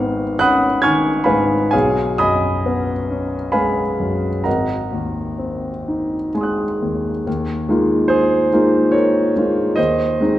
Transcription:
Already playing: G#1 G#2 F5 A#5 C#6 F6
0.00 B3
0.39 C#4 F#5 B5 D#6 F#6
0.82 D#3 G#5 C#6 F6 G#6
1.24 G#2 B4 F5 G#5 B5
1.71 B1 G#4 C#5 F5 G#5
2.18 F#2 D#5 G#5 B5 D#6
2.66 B3
3.10 C#4
3.52 G#3 B4 F5 G#5 B5
4.00 F#2
4.44 G#1 A#4 D#5 F#5 A#5
4.93 D#2
5.38 C4
5.88 D#4
6.34 G#3 G#5 C6
6.41 D#6 F#6
6.82 D#2
7.27 D#2
7.69 G#3 A#3 D#4 F4
8.08 G#4 C5
8.53 G#3 A#3 D#4 F4
8.92 A#4 C#5
9.36 G#3 A#3 D#4 F4
9.76 D#2 C5 D#5
10.21 G#3 C4 D#4

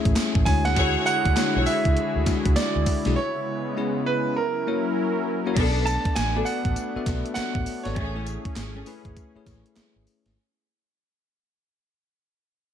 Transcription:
Already playing: A3 C#4 E4 G#4 C#5 E5
0.05 A1, kick, closed hi-hat
0.16 snare, clap, closed hi-hat, tambourine
0.35 A1, kick
0.45 D2 D3 G#3 D4 E4 F#4 G#4 C#5 G#5, kick, open hi-hat, tambourine
0.65 F#5, snare, closed hi-hat
0.76 E4 F#4 G#4 C#5, kick, closed hi-hat, tambourine
1.06 F#5, closed hi-hat, tambourine
1.25 D2, kick, closed hi-hat
1.37 G#3 D4 E4 F#4 C#5, snare, clap, closed hi-hat, tambourine
1.56 B1 E4 F#4 G#4 C#5
1.66 E5, clap, open hi-hat, tambourine
1.85 C#2, kick, closed hi-hat
1.97 muted fingered electric bass stroke, closed hi-hat
2.16 D2
2.26 G#3 D4 E4 F#4 E5, kick, snare, closed hi-hat, tambourine
2.46 C#2, kick, closed hi-hat
2.56 D5, snare, clap, closed hi-hat, tambourine
2.76 D2
2.86 kick, open hi-hat, tambourine
3.05 B1 G#3 D4 E4 F#4 G#4, snare, closed hi-hat
3.16 C#3 G#3 B3 C#5
3.77 B3 C#4 E4 G#4 C#5
4.06 B4
4.36 F#3 C#4 E4 A#4
4.67 A#3 C#4 E4 F#4 C#5
5.46 A#3 C#4 E4 F#4 C#5
5.56 B1 A3 B3 D4 A4, kick, closed hi-hat, crash
5.86 A5, closed hi-hat, tambourine
6.05 kick, closed hi-hat
6.15 A1 G#5, snare, clap, closed hi-hat, tambourine
6.35 B3 D4 F#4 A4 D5
6.45 F#5, open hi-hat, tambourine
6.65 A1, kick, closed hi-hat
6.76 closed hi-hat, tambourine
6.96 B3 F#4 A4 E5, muted fingered electric bass stroke
7.06 B1, kick, snare, closed hi-hat, tambourine
7.26 closed hi-hat
7.34 B3 F#4 A4 C#5 F#5, muted fingered electric bass stroke, snare, clap, closed hi-hat, tambourine
7.55 A1, kick
7.66 open hi-hat, tambourine
7.83 G#1 B3 F#4 A4 C#5 D5, snare, closed hi-hat
7.96 A1 A3 C#4 G#4, kick, closed hi-hat
8.15 A3 E4 G#4 C#5
8.27 closed hi-hat, tambourine
8.45 kick, closed hi-hat
8.56 G#1, snare, clap, closed hi-hat, tambourine
8.75 A3 C#4 G#4
8.86 A3 E4 G#4 B4, open hi-hat, tambourine
9.05 G#1, kick, closed hi-hat
9.17 kick, closed hi-hat, tambourine
9.35 A3 E4 G#4 C#5, muted fingered electric bass stroke
9.46 A1, kick, snare, closed hi-hat, tambourine
9.66 closed hi-hat
9.76 muted fingered electric bass stroke, snare, clap, closed hi-hat, tambourine
9.96 G#1
10.07 open hi-hat, tambourine
10.26 G#1, snare, closed hi-hat

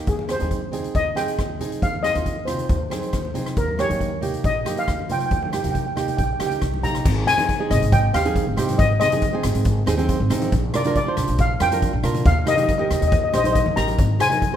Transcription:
0.07 D#2 G#4, kick, closed hi-hat
0.19 high conga
0.28 C4 D#4 G#4 C5, cross-stick, closed hi-hat
0.39 D#2 C4 D#4 G#4, closed hi-hat, high conga
0.51 kick, closed hi-hat
0.72 C4 D#4 G#4, closed hi-hat, low conga
0.84 closed hi-hat
0.95 D#2 D#5, kick, closed hi-hat
1.15 C4 D#4 G#4 G5, cross-stick, closed hi-hat, high conga
1.28 closed hi-hat
1.39 D#2, kick, cross-stick, closed hi-hat
1.59 C4 D#4 G#4, closed hi-hat, high conga, low conga
1.72 closed hi-hat
1.82 D#2 F5, kick, closed hi-hat
1.94 high conga
2.03 C4 D#4 G#4 D#5, cross-stick, closed hi-hat
2.14 D#2 C4 D#4 F4, closed hi-hat, high conga
2.26 kick, closed hi-hat
2.45 C4 D#4 F4 C5, cross-stick, closed hi-hat, low conga
2.54 C5
2.59 C5, closed hi-hat
2.69 D#2 C5, kick, closed hi-hat
2.77 C5
2.84 C5
2.90 C4 D#4 G#4 C5, cross-stick, closed hi-hat, high conga
3.00 C5, closed hi-hat
3.07 C5
3.13 D#2 C5, kick, cross-stick, closed hi-hat
3.22 C5, high conga
3.34 C4 D#4 G#4, closed hi-hat, high conga, low conga
3.46 cross-stick, closed hi-hat
3.57 D#2 A#4, kick, closed hi-hat
3.68 high conga
3.78 A#3 D#4 G4 C#5, cross-stick, closed hi-hat
3.88 D#2 A#3 D#4 G4, closed hi-hat, high conga
4.01 kick, closed hi-hat
4.21 A#3 D#4 G4, closed hi-hat, low conga
4.34 closed hi-hat
4.44 A#1 D#5, kick, closed hi-hat
4.65 A#3 D#4 G4, cross-stick, closed hi-hat, high conga
4.77 F5, closed hi-hat
4.88 D#2, kick, cross-stick, closed hi-hat
4.99 high conga
5.09 A#3 D#4 F4 G5, closed hi-hat, high conga, low conga
5.19 G5, closed hi-hat
5.26 G5
5.31 D#2 G5, kick, closed hi-hat
5.42 G5, high conga
5.50 A#3 D#4 G5, cross-stick, closed hi-hat
5.54 G4 G5
5.63 D#2 A#3 D#4 G4 G5, closed hi-hat, high conga, low conga
5.71 G5, kick, closed hi-hat
5.86 G5
5.96 A#3 D#4 G4, cross-stick, closed hi-hat, low conga
6.01 G5
6.08 G5, closed hi-hat
6.17 A#1 G5, kick, closed hi-hat
6.24 G5
6.33 G5
6.39 C#2 A#3 D#4 G4 G5, cross-stick, closed hi-hat, high conga
6.46 G5
6.51 closed hi-hat
6.62 C2, kick, cross-stick, closed hi-hat
6.74 high conga
6.83 A#1 A#3 D#4 G4 A#5, closed hi-hat, high conga, low conga
6.95 cross-stick, closed hi-hat
7.05 G#1, kick, crash
7.26 C4 D#4 G#4 G#5, cross-stick, closed hi-hat, low conga
7.37 C4 D#4 G#4, closed hi-hat, high conga
7.49 kick, closed hi-hat
7.59 C4 D#4 G#4
7.70 G#1 D#5, cross-stick, closed hi-hat, low conga
7.82 G#1, closed hi-hat
7.92 G5, kick, closed hi-hat
8.13 D#2 C4 D#4 G4 F5, cross-stick, closed hi-hat
8.25 C4 D#4 G#4, closed hi-hat, high conga
8.36 kick, closed hi-hat
8.47 G#1
8.57 G#2 C4 D#4 G4, cross-stick, closed hi-hat, low conga
8.69 closed hi-hat, high conga
8.78 G#1 D#5, kick, closed hi-hat
9.00 C4 D#4 G#4 D#5, cross-stick, closed hi-hat, low conga
9.11 C4 D#4 G#4, closed hi-hat, high conga
9.22 kick, closed hi-hat
9.33 C4 D#4 G#4
9.43 G#1, cross-stick, closed hi-hat, low conga
9.55 G#1, closed hi-hat
9.65 kick, closed hi-hat
9.86 D#2 C4 D#4 G#4, cross-stick, closed hi-hat
9.97 C4 D#4 G#4, closed hi-hat, high conga
10.09 C5, kick, closed hi-hat
10.20 G#1
10.30 A1 C4 D#4 G#4, cross-stick, closed hi-hat, low conga
10.42 closed hi-hat, high conga
10.52 A#1, kick, closed hi-hat
10.73 D4 F4 A#4 D5, cross-stick, closed hi-hat, low conga
10.84 D4 F4 A#4, closed hi-hat, high conga
10.95 D5, kick, closed hi-hat
11.06 D4 F4 C5
11.17 A#1, cross-stick, closed hi-hat, low conga
11.28 A#1, closed hi-hat
11.38 F5, kick, closed hi-hat
11.60 F2 D4 F4 A#4 G5, cross-stick, closed hi-hat
11.71 D4 F4 A#4, closed hi-hat, high conga
11.82 kick, closed hi-hat
11.93 A#1
12.03 A#2 D4 F4 A#4, cross-stick, closed hi-hat, low conga
12.15 closed hi-hat, high conga
12.26 D#2 F5, kick, closed hi-hat, low conga
12.46 D#4 G4 A#4 D#5, cross-stick, closed hi-hat, low conga
12.56 D#4 G4 A#4 D#5, closed hi-hat, high conga
12.63 D#5
12.69 D#5, kick, closed hi-hat
12.78 D#4 G4 A#4 D#5, high conga
12.85 D#5
12.90 D#2 D#5, cross-stick, closed hi-hat, low conga
13.01 D#2 D#5, closed hi-hat
13.07 D#5
13.12 kick, closed hi-hat
13.16 D#5
13.24 D#5
13.29 D#4 G4 D#5
13.34 A#1 C5 D#5, cross-stick, closed hi-hat
13.44 D#4 G4 C5 D#5, closed hi-hat, high conga
13.52 D#5, kick, closed hi-hat
13.59 D#5
13.66 D#2, high conga
13.76 A1 D#4 G4 A#4 A#5, cross-stick, closed hi-hat
13.88 closed hi-hat, high conga
13.98 G#1, kick, closed hi-hat
14.19 D#4 G#4 C5 G#5, cross-stick, closed hi-hat, low conga
14.30 D#4 G#4 A#4, closed hi-hat, high conga
14.42 kick, closed hi-hat
14.52 D#4 G#4

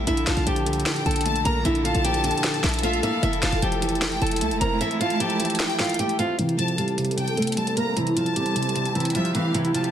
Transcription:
0.07 A#1 A#2 D3 E4 A4 E5, closed hi-hat
0.17 closed hi-hat
0.27 A#1 D3 F4 F5 A5, finger snap, snare, closed hi-hat
0.37 A#1, closed hi-hat
0.47 A#1 F3 G4 G5, closed hi-hat
0.56 closed hi-hat
0.66 C2 D3, closed hi-hat
0.73 closed hi-hat
0.80 closed hi-hat
0.86 D3 G5, finger snap, snare, closed hi-hat
0.96 closed hi-hat
1.06 A#1 D3 A4 A5, closed hi-hat
1.11 closed hi-hat
1.16 closed hi-hat
1.21 closed hi-hat
1.26 A3 A5, closed hi-hat
1.36 closed hi-hat
1.45 A#1 A#3 A#4 A#5, closed hi-hat
1.65 A#1 D3 E4 E5, closed hi-hat
1.75 closed hi-hat
1.85 D3 F4 F5 A5, closed hi-hat
1.95 A#1, closed hi-hat
2.05 F3 G4 G5, closed hi-hat
2.14 closed hi-hat
2.24 D3, closed hi-hat, open hi-hat
2.31 closed hi-hat
2.37 closed hi-hat
2.44 D3, finger snap, snare, closed hi-hat
2.54 closed hi-hat
2.64 A#1 D3 E4 E5, finger snap, snare, closed hi-hat
2.69 closed hi-hat
2.74 closed hi-hat
2.79 A3, closed hi-hat
2.83 F4 E5 F5, closed hi-hat
2.93 closed hi-hat
3.03 A#3 E4 E5 F5, closed hi-hat
3.23 F1 E3 A3 E4 E5, closed hi-hat
3.33 closed hi-hat
3.42 F1 E3 F4 F5 A5, finger snap, snare, closed hi-hat
3.52 F1, closed hi-hat
3.62 F1 F3 G4 G5, closed hi-hat
3.72 closed hi-hat
3.82 E3, closed hi-hat
3.89 closed hi-hat
3.95 closed hi-hat
4.02 E3 G5, finger snap, snare, closed hi-hat
4.12 closed hi-hat
4.21 F1 E3 A4 A5, closed hi-hat
4.27 closed hi-hat
4.31 closed hi-hat
4.36 closed hi-hat
4.41 C2 A3 A5, closed hi-hat
4.51 F1, closed hi-hat
4.61 F1 C4 A#4 A#5, closed hi-hat
4.81 E3 E4 E5, closed hi-hat
4.91 closed hi-hat
5.00 E3 F4 F5 A5, closed hi-hat
5.10 closed hi-hat
5.20 F3 G4 G5, closed hi-hat
5.30 closed hi-hat
5.40 E3, closed hi-hat, open hi-hat
5.45 closed hi-hat
5.50 closed hi-hat
5.55 closed hi-hat
5.59 E3 G5, finger snap, snare, closed hi-hat
5.70 closed hi-hat
5.79 E3 F4 F5, finger snap, snare, closed hi-hat
5.84 closed hi-hat
5.89 closed hi-hat
5.94 closed hi-hat
5.99 A3 G4 G5, closed hi-hat
6.09 closed hi-hat
6.19 C4 F4 F5, closed hi-hat
6.39 C3 E3 G3 C4 A4, closed hi-hat
6.49 closed hi-hat
6.58 C3 F3 F4 A5, closed hi-hat
6.68 closed hi-hat
6.78 E3 G3 G4, closed hi-hat
6.88 closed hi-hat
6.98 C3, closed hi-hat
7.05 closed hi-hat
7.11 closed hi-hat
7.17 C3 G5, closed hi-hat
7.28 closed hi-hat
7.37 C3 A3 A4, closed hi-hat
7.42 closed hi-hat
7.47 closed hi-hat
7.52 closed hi-hat
7.57 G3 A5, closed hi-hat
7.67 closed hi-hat
7.77 A3 A#3 A#4 A#5, closed hi-hat
7.97 C3 E3 E4, closed hi-hat
8.07 closed hi-hat
8.16 C3 F3 F4 A5, closed hi-hat
8.26 closed hi-hat
8.36 E3 G3 G4, closed hi-hat
8.46 closed hi-hat
8.56 C3, closed hi-hat
8.62 closed hi-hat
8.69 closed hi-hat
8.75 C3 G4, closed hi-hat
8.85 closed hi-hat
8.95 C3 E3 E4, closed hi-hat
9.00 closed hi-hat
9.05 closed hi-hat
9.10 closed hi-hat
9.15 F3 G3 F4 E5, closed hi-hat
9.25 closed hi-hat
9.35 E3 A3 E4 F5, closed hi-hat
9.54 C3 E3 E4, closed hi-hat
9.65 closed hi-hat
9.74 C3 F3 F4 A5, closed hi-hat
9.84 closed hi-hat

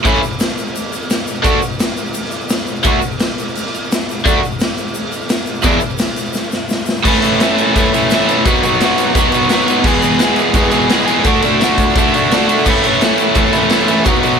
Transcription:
0.04 A2 E3 A3 C#4 E4, kick, crash, shaker
0.15 shaker
0.23 crash, shaker
0.32 shaker
0.40 snare, crash, shaker
0.49 shaker
0.58 crash, shaker
0.67 shaker
0.75 crash, shaker
0.92 crash, shaker
1.10 snare, crash, shaker
1.27 crash, shaker
1.43 D3 A3 D4 F#4, kick, crash, shaker
1.62 crash, shaker
1.72 shaker
1.79 snare, crash, shaker
1.97 crash, shaker
2.06 shaker
2.14 crash, shaker
2.24 snare
2.31 crash, shaker
2.41 shaker
2.49 snare, crash, shaker
2.66 crash, shaker
2.75 shaker
2.83 D3 A3 D4 F#4, kick, crash, shaker
3.02 crash, shaker
3.19 snare, crash, shaker
3.38 crash, shaker
3.55 crash, shaker
3.66 snare
3.75 crash, shaker
3.84 shaker
3.91 snare, crash, shaker
4.09 crash, shaker
4.19 shaker
4.24 D3 A3 D4 F#4, kick, crash, shaker
4.43 crash, shaker
4.51 shaker
4.60 snare, crash, shaker
4.78 crash, shaker
4.87 shaker
4.95 crash, shaker
5.12 crash, shaker
5.21 shaker
5.29 snare, crash, shaker
5.46 crash, shaker
5.55 shaker
5.62 E2 B2 E3 G#3 D4, kick, crash, shaker
5.67 E4
5.80 crash, shaker
5.98 snare, crash, shaker
6.16 crash, shaker
6.25 shaker
6.33 snare, shaker
6.43 shaker
6.52 snare, shaker
6.69 snare, shaker
6.79 shaker
6.86 snare, shaker
6.97 shaker
7.04 A2 E3 A3 C#4, kick, crash, shaker
7.08 E4
7.15 shaker
7.21 A3 C#4 E4, ride, shaker
7.33 shaker
7.40 E3 A3 C#4, snare, ride, shaker
7.44 E4
7.58 ride, shaker
7.75 A2 E3 A3 C#4, kick, ride, shaker
7.79 E4
7.85 shaker
7.93 A3 C#4 E4, ride, shaker
8.02 shaker
8.10 E3 A3 C#4, snare, ride, shaker
8.14 E4
8.27 C#4 E4, ride, shaker
8.32 A3
8.45 B2 F#3 B3 D#4 F#4, kick, ride, shaker
8.55 shaker
8.63 D#4 F#4, ride, shaker
8.67 B3
8.74 shaker
8.80 F#3 B3 D#4 F#4, snare, ride, shaker
8.98 ride, shaker
9.15 B2 F#3 B3 D#4, kick, ride, shaker
9.19 F#4
9.32 D#4 F#4, ride, shaker
9.37 B3
9.49 F#3 B3 D#4, snare, ride, shaker
9.53 F#4
9.61 shaker
9.67 D#4 F#4, ride, shaker
9.71 B3
9.82 E2 B2 E3 G#3, kick, crash, shaker
9.87 B3 G#4
9.95 shaker
10.00 G#3 B3 G#4, ride, shaker
10.04 E3
10.18 E3 G#3 B3, snare, ride, shaker
10.23 G#4
10.36 ride, shaker
10.53 E2 B2 E3 G#3 B3 G#4, kick, ride, shaker
10.70 E3 G#3 B3 G#4, ride, shaker
10.81 shaker
10.89 E3 G#3 B3, snare, ride, shaker
10.93 G#4
10.99 shaker
11.06 E3 G#3 B3 G#4, ride, shaker
11.23 D3 A3 D4, kick, ride, shaker
11.27 F#4
11.35 shaker
11.42 A3 D4 F#4, ride, shaker
11.59 D3 A3 D4, snare, ride, shaker
11.63 F#4
11.78 kick, ride, shaker
11.89 shaker
11.95 D3 A3 D4 F#4, kick, ride, shaker
12.13 A3 D4 F#4, ride, shaker
12.24 shaker
12.30 D3 A3 D4, snare, ride, shaker
12.34 F#4
12.41 shaker
12.47 A3 D4 F#4, ride, shaker
12.58 shaker
12.65 A2 E3 A3 C#4, kick, crash, shaker
12.70 E4
12.77 shaker
12.83 C#4 E4, ride, shaker
12.87 A3
12.93 shaker
13.01 E3 A3 C#4, snare, ride, shaker
13.05 E4
13.18 ride, shaker
13.35 A2 E3 A3 C#4, kick, ride, shaker
13.40 E4
13.46 shaker
13.53 C#4 E4, ride, shaker
13.58 A3
13.70 E3 A3 C#4, snare, ride, shaker
13.75 E4
13.80 shaker
13.88 C#4 E4, ride, shaker
13.92 A3
14.04 B2 F#3 B3 D#4, kick, ride, shaker
14.08 F#4
14.14 shaker
14.21 D#4 F#4, ride, shaker
14.25 B3

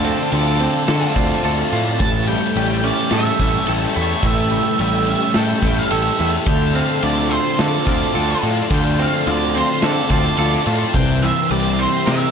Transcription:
Already playing: D2 D3 C4 F4 A4 D5 F5 D6
0.04 A3 C4, ride
0.32 D2 D3 F4 A4, ride
0.59 C4, ride
0.88 D3 A3 F4 A4, snare, ride
1.16 D2 C4 F4, kick, ride
1.44 D2 F4 A4, ride
1.73 A2 A3 F4 A4, snare, ride
2.00 A1 A2 E3 E5 G5 A5 C#6, kick, ride
2.27 G3 A3 G5, ride
2.56 A1 G3 G4, ride
2.83 C#4 D5, ride
3.11 A2 A3 E4 A4 E5, snare, ride
3.39 A1 C#4 E4, kick, ride
3.67 A1 E4 G4 A4, ride
3.94 E2 A3 E4 A4, ride
4.01 C#5
4.23 A1 A2 E3 E5, kick, ride
4.50 G3 A3, ride
4.79 A1 G3 G4 E5, ride
5.06 C#4 E5, ride
5.34 A2 A3 E4 A4 G5, snare, ride
5.62 A1 C#4 E4, kick, ride
5.79 F5
5.90 A1 E4 G4 A4 E5, ride
6.17 E2 A3 E4 A4, snare, ride
6.46 D2 D3 A3 D5 F5 G5 C6, kick, ride
6.73 A3 C4 F5, ride
7.02 D2 D3 F4 D5, ride
7.29 C4 C5, ride
7.58 D3 A3 F4 A4 D5, snare, ride
7.86 D2 C4 F4 D5, kick, ride
8.14 D2 F4 A4, ride
8.43 A2 A3 F4 A4, snare, ride
8.70 D2 D3 A3 G5, kick, ride
8.99 A3 C4 F5, ride
9.27 D2 D3 F4 D5, ride
9.55 C4 C5, ride
9.82 D3 A3 F4 A4 D5, snare, ride
10.10 D2 C4 F4 D5, kick, ride
10.37 D2 F4 A4, ride
10.66 A2 A3 F4 A4, snare, ride
10.93 C2 C3 E3 A#4 E5 G5, kick, ride
11.22 E3 A#3 E5, ride
11.51 C2 G3 G4 D5, ride
11.79 C4 C5, ride
12.06 C3 A#3 E4 A#4 E5, snare, ride

